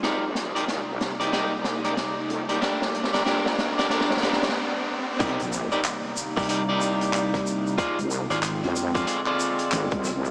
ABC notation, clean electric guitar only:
X:1
M:4/4
L:1/16
Q:"Swing 16ths" 1/4=93
K:Cm
V:1 name="Clean electric guitar"
[EGBd] z2 [EGBd] z3 [EGBd] [EGBd] z2 [EGBd] z3 [EGBd] | [DGBd] z2 [DGBd] [DGBd] z2 [DGBd] [DGBd] z [DGBd] z4 z | [EGBd] z2 [EGBd] z3 [EGBd] [EGBd] [EGBd]6- [EGBd] | [FAcd] z2 [FAcd] z3 [FAcd] [FAcd] [FAcd]6- [FAcd] |]